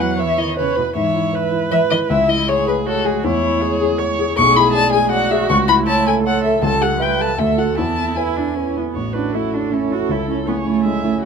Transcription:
Already playing: E2 B4
0.00 F#3 E4 F#5
0.18 E3 B4 C#5 E5
0.38 D#3 E4 D#5
0.57 C#3 B4 C#5
0.76 B2 E4 B4
0.95 G#2 E3 C#5 E5
1.14 E4
1.33 B4
1.52 E4
1.71 E3 B4 E5
1.90 D#3 E4 D#5
2.09 C#2 G#3 E4 E5
2.28 E4 D#5
2.47 G#4 C#5
2.66 G#4 B4
2.85 F#4 A4 C#5
3.05 G#4
3.24 E2 E4 C#5
3.43 E4
3.61 G#4 C#5
3.81 G#4
3.99 C#5
4.19 G#4
4.36 B1 G#3 G#4 C#6
4.56 E4 B5
4.73 D5 A5
4.92 G#4 G#5
5.12 F#4 D5 F#5
5.31 G#4 E5
5.49 C#2 A3 C#6
5.68 E4 B5
5.86 E4 C#5 A5
6.06 A4 G#5
6.24 A4 C#5 F#5
6.44 A4 E5
6.62 C#2 G3 A4 A5
6.81 G4 F#5
7.00 B4 E5 G5
7.19 A4 A5
7.38 D2 A3 A4 E5
7.58 F#4 A4 F#5
7.77 E2 B3 E4 A5
7.98 E4
8.17 E4 B4 G#5
8.37 D4 E4
8.56 C#4 B4
8.76 B3 E4
8.95 A1 F#4 C#5
9.13 C#4 D4 E4 B4
9.32 A3 C#4 E4 A4
9.53 C#4 D4 E4
9.71 A3 C#4 E4
9.90 C#4 E4 F#4
10.09 C#2 E4 A4
10.28 C#4 E4
10.46 A3 B3 C#4 E4 G#4 C#5
10.65 A3 C#4 E4
10.84 G#3 A3 C#4 E4 E5
11.04 A3 C#4 E4
11.22 F#4

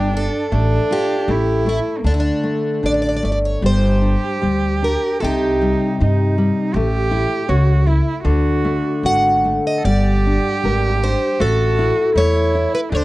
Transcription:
Already playing: G1 G3 D4 G4
0.13 D4 A4
0.52 A1 A3 D4
0.91 F4 G4
1.28 A1 A3 E4
1.66 A3 E4
1.99 A#3
2.04 D2 D3 A3 D4
2.14 E4
2.20 D4
2.44 A3
2.83 A1 D3 D5
2.94 D5
3.02 D5
3.09 D5
3.17 D5
3.23 G1 A3 D5
3.32 D5
3.45 C#5
3.62 G1 G3 G4 C5
4.02 D4
4.42 D2 G3
4.82 D4 A#4
5.20 C2 C3 D#4 A4
5.24 G4
5.61 G3
6.01 G2 D#4
6.38 G3
6.74 A1 A3 G4
7.11 E4
7.49 C#2 F#4 C#5
7.87 E4
8.23 D2 D3 F#4
8.65 A3
9.03 G#1 F#4 F#5
9.45 A3
9.67 D#5
9.78 A4
9.85 G1 G3 G4 D5
10.27 D4
10.64 G#1 A#4
11.03 D4 C5
11.40 A1 A3 F#4 A4
11.79 E4
12.15 E2 A3 E4 C#5
12.55 E4
12.75 B4
12.92 D2 D3 D4 C5

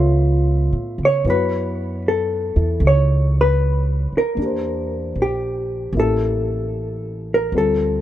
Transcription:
Already playing: C#2 B3 F4 A4 C#5 E5
0.73 A2
0.98 C#3
1.05 C#5
1.25 F#2 B3 E4 F#4 C#5
1.30 B4
2.08 A4
2.56 E2 E4
2.80 C#2
2.87 C#5
3.41 B4
4.12 muted upright bass stroke
4.18 A#4
4.35 E2 A#3 D4
4.42 G4
4.46 C5
5.15 A#1
5.22 G4
5.93 A1 A#3 C#4
5.97 E4 G4 A4
7.34 A#4
7.52 D2 G3 C4 F4 A4
7.58 A4

